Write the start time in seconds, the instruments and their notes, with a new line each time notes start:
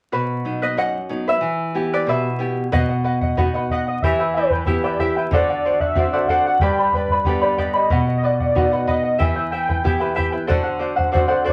0.12 nylon-string guitar B2, charango F#4 B4
0.45 nylon-string guitar F#3 B3 D#4
0.62 charango B4 D#5
0.77 nylon-string guitar F#2, charango D#5 F#5
1.09 nylon-string guitar F#3 B3 D#4
1.28 charango B4 E5
1.41 nylon-string guitar E3
1.75 nylon-string guitar B3 E4 G4
1.94 charango B4 D5
2.07 nylon-string guitar B2, charango B4 E5
2.39 nylon-string guitar B3 E4 G4
2.72 nylon-string guitar B2, charango B4 D#5 F#5, bombo low
2.89 charango D#5 F#5
3.04 charango B4 D#5 F#5
3.21 charango D#5 F#5, bombo low
3.37 nylon-string guitar B3 D#4 F#4, charango B4 D#5 F#5, bombo low
3.54 charango B4 D#5 F#5
3.69 charango B4 D#5 F#5, soft synth lead D#5, bombo low
3.87 soft synth lead D#5, charango D#5 F#5
4.02 nylon-string guitar E3, charango E4 G4 B4 E5 G5, soft synth lead E5, bombo low
4.19 charango E4 B4 G5
4.34 charango E4 B4 E5 G5, soft synth lead B4
4.50 charango E4 B4 G5, bombo low
4.66 nylon-string guitar B3 E4 G4, charango E4 B4 E5 G5, bombo low
4.84 charango E4 G4 B4 E5 G5, soft synth lead D5
4.99 charango E4 G4 B4 E5 G5, soft synth lead E5, bombo low
5.16 charango E4 B4 G5
5.31 nylon-string guitar D3, charango F#4 A4 C5 D5 F#5, soft synth lead D5, bombo low
5.50 charango F#4 D5 F#5
5.65 charango F#4 C5 D5 F#5
5.80 charango F#4 D5 F#5, soft synth lead E5, bombo low
5.95 nylon-string guitar C4 D4 F#4, charango F#4 C5 D5 F#5, bombo low
6.13 charango F#4 A4 C5 D5 F#5
6.28 charango F#4 A4 C5 D5 F#5, soft synth lead F#5, bombo low
6.46 charango F#4 D5 F#5
6.59 nylon-string guitar G2, charango G4 B4 D5 G5 B5, soft synth lead G5, bombo low
6.79 charango B4 D5 B5
6.93 soft synth lead B4, charango B4 D5 G5 B5, bombo low
7.08 charango B5, bombo low
7.13 charango B4 D5
7.24 nylon-string guitar D3 B3 G4, charango B4 D5 G5 B5, bombo low
7.42 charango G4 B4 D5 G5 B5, soft synth lead D5
7.57 charango G4 B4 D5 G5 B5, soft synth lead D#5, bombo low
7.74 charango B4 D5 B5
7.90 nylon-string guitar B2, charango B4 D#5 F#5, bombo low
8.07 charango D#5 F#5
8.17 soft synth lead D#5
8.23 charango B4 D#5 F#5, soft synth lead D5
8.39 charango D#5 F#5, bombo low
8.55 nylon-string guitar B3 D#4 F#4, charango B4 D#5 F#5, bombo low
8.72 charango B4 D#5 F#5
8.87 charango B4 D#5 F#5, soft synth lead D#5, bombo low
9.03 charango D#5 F#5
9.18 nylon-string guitar E3, charango E4 G4 B4 E5 G5, soft synth lead E5, bombo low
9.36 charango E4 B4 G5
9.51 charango E4 B4 E5 G5, soft synth lead G5
9.69 charango E4 B4 G5, bombo low
9.84 nylon-string guitar B3 E4 G4, charango E4 B4 E5 G5, bombo low
10.00 charango E4 G4 B4 E5 G5
10.16 charango E4 G4 B4 E5 G5, bombo low
10.32 charango E4 B4 G5
10.47 nylon-string guitar D3, charango F#4 A4 C5 D5 F#5, bombo low
10.63 charango F#4 C5 F#5
10.79 charango F#4 C5 D5 F#5
10.96 charango F#4 C5 F#5, bombo low
11.12 nylon-string guitar C4 D4 F#4, charango F#4 C5 D5 F#5, bombo low
11.28 charango F#4 A4 C5 D5 F#5
11.44 charango F#4 A4 C5 D5 F#5, bombo low
11.49 soft synth lead D5